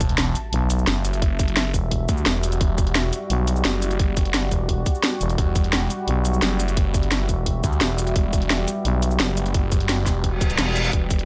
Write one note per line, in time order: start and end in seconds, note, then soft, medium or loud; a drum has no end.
0.00 0.17 E1 loud
0.00 11.25 G3 medium
0.00 10.89 F#4 medium
0.00 2.60 E5 medium
0.00 kick loud
0.00 closed hi-hat medium
0.00 sub drop medium
0.00 cabasa medium
0.09 closed hi-hat soft
0.18 0.34 E1 medium
0.18 snare loud
0.18 closed hi-hat loud
0.35 closed hi-hat medium
0.35 cabasa medium
0.53 0.86 B1 loud
0.53 closed hi-hat loud
0.70 closed hi-hat medium
0.70 cabasa medium
0.79 cabasa soft
0.87 1.73 F#1 loud
0.87 snare loud
0.87 closed hi-hat loud
1.05 closed hi-hat medium
1.05 cabasa medium
1.13 closed hi-hat soft
1.13 cabasa soft
1.22 kick loud
1.22 closed hi-hat loud
1.39 kick loud
1.39 closed hi-hat medium
1.39 cabasa medium
1.48 closed hi-hat soft
1.57 snare loud
1.57 closed hi-hat loud
1.74 2.07 E1 loud
1.74 kick medium
1.74 closed hi-hat medium
1.74 cabasa medium
1.91 kick medium
1.91 closed hi-hat loud
2.09 2.25 D2 loud
2.09 kick loud
2.09 closed hi-hat medium
2.09 cabasa medium
2.17 cabasa soft
2.26 2.59 E1 loud
2.26 snare loud
2.26 closed hi-hat loud
2.43 closed hi-hat medium
2.43 cabasa medium
2.52 closed hi-hat soft
2.52 cabasa soft
2.61 2.94 E1 loud
2.61 5.37 D5 medium
2.61 kick loud
2.61 closed hi-hat loud
2.78 kick loud
2.78 closed hi-hat medium
2.78 cabasa medium
2.87 closed hi-hat soft
2.95 3.11 E1 loud
2.95 snare loud
2.95 closed hi-hat loud
3.13 closed hi-hat medium
3.13 cabasa medium
3.30 3.63 B1 loud
3.30 closed hi-hat loud
3.47 closed hi-hat medium
3.47 cabasa medium
3.56 cabasa soft
3.65 4.50 F#1 loud
3.65 snare loud
3.65 closed hi-hat loud
3.82 closed hi-hat medium
3.82 cabasa medium
3.91 closed hi-hat soft
3.91 cabasa soft
3.99 kick loud
3.99 closed hi-hat medium
4.17 kick loud
4.17 closed hi-hat medium
4.17 cabasa medium
4.25 closed hi-hat soft
4.34 snare loud
4.34 closed hi-hat medium
4.52 4.85 E1 loud
4.52 kick medium
4.52 closed hi-hat medium
4.52 cabasa medium
4.69 kick medium
4.69 closed hi-hat medium
4.86 kick loud
4.86 closed hi-hat medium
4.86 cabasa medium
4.95 cabasa soft
5.04 snare loud
5.04 closed hi-hat medium
5.21 5.37 E1 loud
5.21 closed hi-hat medium
5.21 cabasa medium
5.30 closed hi-hat soft
5.30 cabasa soft
5.38 5.72 E1 loud
5.38 8.15 E5 medium
5.38 kick loud
5.38 closed hi-hat medium
5.56 kick loud
5.56 closed hi-hat medium
5.56 cabasa medium
5.64 closed hi-hat soft
5.73 5.89 E1 loud
5.73 snare loud
5.73 closed hi-hat medium
5.90 closed hi-hat medium
5.90 cabasa medium
6.08 6.41 B1 loud
6.08 closed hi-hat medium
6.25 closed hi-hat medium
6.25 cabasa medium
6.34 cabasa soft
6.42 7.28 F#1 loud
6.42 snare loud
6.42 closed hi-hat medium
6.60 closed hi-hat medium
6.60 cabasa medium
6.68 closed hi-hat soft
6.68 cabasa soft
6.77 kick loud
6.77 closed hi-hat medium
6.94 kick loud
6.94 closed hi-hat medium
6.94 cabasa medium
7.03 closed hi-hat soft
7.12 snare loud
7.12 closed hi-hat medium
7.29 7.62 E1 loud
7.29 kick medium
7.29 closed hi-hat medium
7.29 cabasa medium
7.46 kick medium
7.46 closed hi-hat medium
7.64 7.80 D2 loud
7.64 kick loud
7.64 closed hi-hat medium
7.64 cabasa medium
7.72 cabasa soft
7.81 8.14 E1 loud
7.81 snare loud
7.81 closed hi-hat medium
7.98 closed hi-hat medium
7.98 cabasa medium
8.07 closed hi-hat soft
8.07 cabasa soft
8.16 8.49 E1 loud
8.16 10.92 B4 medium
8.16 kick loud
8.16 closed hi-hat medium
8.33 kick loud
8.33 closed hi-hat medium
8.33 cabasa medium
8.42 closed hi-hat soft
8.50 8.66 E1 loud
8.50 snare loud
8.50 closed hi-hat medium
8.68 closed hi-hat medium
8.68 cabasa medium
8.85 9.18 B1 loud
8.85 closed hi-hat medium
9.02 closed hi-hat medium
9.02 cabasa medium
9.11 cabasa soft
9.20 10.05 F#1 loud
9.20 snare loud
9.20 closed hi-hat medium
9.37 closed hi-hat medium
9.37 cabasa medium
9.46 closed hi-hat soft
9.46 cabasa soft
9.54 kick loud
9.54 closed hi-hat loud
9.72 kick loud
9.72 closed hi-hat medium
9.72 cabasa medium
9.80 closed hi-hat soft
9.89 snare loud
9.89 closed hi-hat medium
10.06 10.57 E1 loud
10.06 kick medium
10.06 snare soft
10.06 closed hi-hat medium
10.06 cabasa medium
10.24 kick medium
10.24 closed hi-hat medium
10.24 reverse cymbal medium
10.41 kick loud
10.41 closed hi-hat medium
10.41 cabasa medium
10.50 closed hi-hat soft
10.50 cabasa soft
10.58 10.92 E1 loud
10.58 snare loud
10.58 closed hi-hat loud
10.76 closed hi-hat medium
10.76 cabasa medium
10.85 closed hi-hat soft
10.85 cabasa soft
10.93 11.25 E1 loud
10.93 kick loud
10.93 closed hi-hat loud
11.11 kick loud
11.11 closed hi-hat medium
11.11 cabasa medium
11.19 closed hi-hat soft